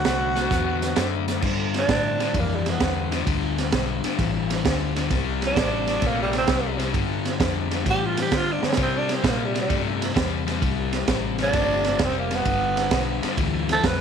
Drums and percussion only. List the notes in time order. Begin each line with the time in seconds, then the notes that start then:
0.05 snare, closed hi-hat
0.36 snare, closed hi-hat
0.51 kick, snare, closed hi-hat
0.82 snare, closed hi-hat
0.96 snare, closed hi-hat
1.28 snare, closed hi-hat
1.42 kick, snare, crash
1.74 snare, ride
1.89 kick, snare, ride
2.20 snare, ride
2.34 kick, ride
2.66 snare, ride
2.80 kick, snare, ride
3.12 snare, ride
3.27 kick, ride
3.58 snare, ride
3.72 kick, snare, ride
4.04 snare, ride
4.19 kick, snare, ride
4.50 snare, ride
4.65 kick, snare, ride
4.96 snare, ride
5.10 kick, snare, ride
5.42 snare, ride
5.56 kick, snare, ride
5.87 snare, ride
6.02 kick, snare, ride
6.33 snare, ride
6.47 kick, snare, ride
6.79 snare, ride
6.94 kick, ride
7.25 snare, ride
7.40 kick, snare, ride
7.71 snare, ride
7.86 kick, snare, ride
8.17 snare, ride
8.32 kick, snare, ride
8.63 snare
8.73 snare
8.77 kick, ride
9.09 snare, ride
9.24 kick, snare, ride
9.55 snare, ride
9.70 kick, ride
10.02 snare, ride
10.16 kick, snare, ride
10.48 snare, ride
10.62 kick, ride
10.93 snare, ride
11.08 kick, snare, ride
11.38 snare, ride
11.53 kick, snare, ride
11.84 snare, ride
11.99 kick, snare, ride
12.31 snare, ride
12.45 kick, ride
12.77 snare, ride
12.91 kick, snare, ride
13.23 snare, ride
13.37 kick, ride
13.69 snare, ride
13.84 kick, snare, ride